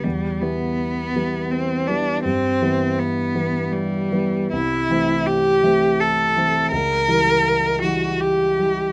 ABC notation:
X:1
M:3/4
L:1/8
Q:1/4=82
K:Em
V:1 name="Cello"
G, B,3 C D | C2 B,2 G,2 | E2 G2 A2 | ^A3 F G2 |]
V:2 name="Grand piano" clef=bass
E,, [E,G,B,]2 [E,G,B,]2 [E,G,B,] | G,, [E,G,B,]2 [E,G,B,]2 [E,G,B,] | C,, [E,A,C]2 [E,A,C]2 [E,A,C] | ^C,, [E,G,E]2 [E,G,E]2 [E,G,E] |]